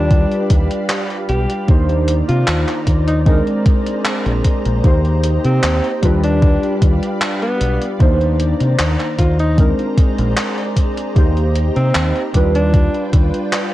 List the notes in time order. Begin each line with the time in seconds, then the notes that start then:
Already playing: D#2 G3 D4 F4 G4 B4 D5 F5 B5
0.11 kick, closed hi-hat
0.31 closed hi-hat
0.50 D#2, kick, closed hi-hat
0.71 closed hi-hat
0.89 clap, closed hi-hat
1.10 closed hi-hat
1.29 B1 G4, closed hi-hat
1.50 closed hi-hat
1.67 D#2 D#3 A#3 D4 D#4 C5 D5 A#5, kick, closed hi-hat
1.89 closed hi-hat
2.08 closed hi-hat
2.29 C3 F4, closed hi-hat
2.47 D#2, clap, closed hi-hat
2.68 clap, closed hi-hat
2.87 D#2, kick, closed hi-hat
3.08 D#4, closed hi-hat
3.25 G#3 C4 D4 D#4 G#4 A#4 A#5, kick, closed hi-hat
3.47 closed hi-hat
3.66 kick, closed hi-hat
3.87 closed hi-hat
4.05 clap, closed hi-hat
4.26 A#1, closed hi-hat
4.45 kick, closed hi-hat
4.66 A#1, closed hi-hat
4.83 D#2 A#3 D#4 G4 C5 D#5, kick, closed hi-hat
5.05 closed hi-hat
5.24 closed hi-hat
5.45 C3 C4, closed hi-hat
5.63 D#2, clap, closed hi-hat
5.84 closed hi-hat
6.02 D#2 G3 D4 F4 B4 D5 F5 B5, kick, closed hi-hat
6.24 D4, closed hi-hat
6.42 kick, closed hi-hat
6.63 closed hi-hat
6.82 D#2, kick, closed hi-hat
7.03 closed hi-hat
7.21 clap, closed hi-hat
7.42 B3, closed hi-hat
7.61 B1, closed hi-hat
7.82 closed hi-hat
7.99 D#2 D#3 A#3 D4 D#4 C5 A#5, kick, closed hi-hat
8.21 closed hi-hat
8.40 closed hi-hat
8.61 C3, closed hi-hat
8.79 D#2, clap, closed hi-hat
9.00 clap, closed hi-hat
9.19 D#2 F4, kick, closed hi-hat
9.39 D#4, closed hi-hat
9.57 G#3 C4 D4 G#4 A#4 D5, kick, closed hi-hat
9.79 closed hi-hat
9.98 kick, closed hi-hat
10.18 A#1, closed hi-hat
10.37 clap, closed hi-hat
10.58 closed hi-hat
10.77 kick, closed hi-hat
10.97 closed hi-hat
11.15 D#2 A#3 D#4 G4 C5 D#5, kick, closed hi-hat
11.37 closed hi-hat
11.55 closed hi-hat
11.76 C3 C4, closed hi-hat
11.95 D#2, clap, closed hi-hat
12.16 closed hi-hat
12.33 D#2 G3 D4 F4 B4 D5 G5, kick, closed hi-hat
12.55 D4, closed hi-hat
12.74 kick, closed hi-hat
12.95 closed hi-hat
13.13 D#2, kick, closed hi-hat
13.34 closed hi-hat
13.53 clap, closed hi-hat